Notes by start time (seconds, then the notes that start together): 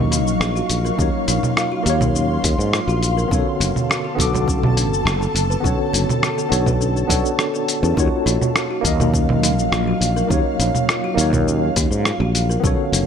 Already playing: D#2 F#3 A#3 D#4 F4 F#4 C#5 D#5 F5 C#6
0.12 D#4, closed hi-hat, cabasa
0.26 A#1, cabasa
0.41 A#1, cross-stick, cabasa
0.56 F#4, cabasa
0.69 A#1, closed hi-hat, cabasa
0.85 A#4, cabasa
0.95 D#2 A#3 C#4 D#4 F5 C6, kick
1.00 F#3 C#5, cabasa
1.28 A#1 D#4, closed hi-hat, cabasa
1.43 low conga, cabasa
1.57 F4, cross-stick, cabasa
1.72 F#4
1.83 D#2 A#3 D#4 F5, closed hi-hat, cabasa
1.88 F#3 C#5
2.01 A#4, kick, low conga, cabasa
2.15 C#4, cabasa
2.44 D#2 D#4, kick, closed hi-hat, cabasa
2.58 G#2, cabasa
2.73 F4, cross-stick, cabasa
2.88 A#1 F#4, cabasa
3.03 closed hi-hat, cabasa
3.17 A#4, cabasa
3.28 B1 D3 B3 C#4 F#4 A4 A5, kick
3.32 A4 C#5, cabasa
3.60 F#1 D4, closed hi-hat, cabasa
3.76 low conga, cabasa
3.90 F#4, cross-stick, cabasa
4.04 A4
4.15 B1 D3 B3 F#4, kick
4.20 A4 D6, closed hi-hat, cabasa
4.34 B4, low conga, cabasa
4.48 C#4, kick, cabasa
4.63 low conga
4.77 D4, closed hi-hat, cabasa
4.91 F#1, cabasa
5.05 F#1 F#4, cross-stick, cabasa
5.21 A4, cabasa
5.35 F#1, closed hi-hat, cabasa
5.50 B4, cabasa
5.60 B1 D3 B3 C#4 F#4, kick
5.66 A4 C#5, cabasa
5.93 F#1 D4, closed hi-hat, cabasa
6.09 low conga, cabasa
6.23 F#4, cross-stick, cabasa
6.38 A4, cabasa
6.49 B1 B3 D4 F#4 A4 C#5, closed hi-hat, cabasa
6.66 B4, kick, low conga, cabasa
6.81 C#4, cabasa
6.97 cabasa
7.08 B1 B3 D4 F#4 A4 C#5 D5, kick, closed hi-hat, cabasa
7.26 cabasa
7.39 A4, cross-stick, cabasa
7.54 A4, cabasa
7.68 closed hi-hat, cabasa
7.83 E2 C#4, cabasa
7.93 D#2 F#3 A#3 C#4 D#4 F4 F5, kick
7.98 F#4 C#5, cabasa
8.26 A#1 D#4, closed hi-hat, cabasa
8.41 low conga, cabasa
8.56 F4, cross-stick, cabasa
8.71 F#4
8.81 D#2 A#3 D#4 F5, kick, closed hi-hat
8.85 F#3 D#5, cabasa
9.00 A#4, low conga, cabasa
9.14 C#4, kick, cabasa
9.29 low conga
9.43 D#4, closed hi-hat, cabasa
9.58 A#1, cabasa
9.72 A#1 F4, cross-stick, cabasa
9.88 F#4
10.01 A#1, closed hi-hat, cabasa
10.16 A#4, cabasa
10.27 D#2 A#3 C#4 D#4 F5, kick
10.31 F#3 C#5, cabasa
10.59 A#1 D#4, closed hi-hat, cabasa
10.75 low conga, cabasa
10.89 F4, cross-stick, cabasa
11.04 F#4
11.14 D#2 A#3 D#4 F5
11.18 F#3 C#5, closed hi-hat, cabasa
11.33 A#4, kick, low conga, cabasa
11.48 C#4, cabasa
11.76 D#2 D#4, kick, closed hi-hat, cabasa
11.91 G#2, cabasa
12.05 F4, cross-stick, cabasa
12.20 A#1 F#4
12.35 closed hi-hat, cabasa
12.49 A#4, cabasa
12.60 B1 D3 B3 C#4 F#4, kick
12.65 A4 C#5, cabasa
12.92 F#1 D4, closed hi-hat, cabasa